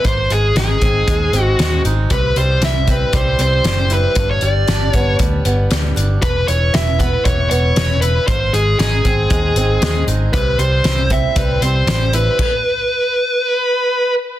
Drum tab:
CC |--------|--------|--------|--------|
HH |xxxxxxxx|xxxxxxxx|xxxxxxxx|xxxxxxxx|
SD |--o---o-|--o---o-|--o---o-|--o---o-|
BD |o--oo---|o--oo---|o--oo---|o--oo---|

CC |--------|--------|x-------|
HH |xxxxxxxx|xxxxxxxx|--------|
SD |--o---o-|--o---o-|--------|
BD |o--oo---|o--oo---|o-------|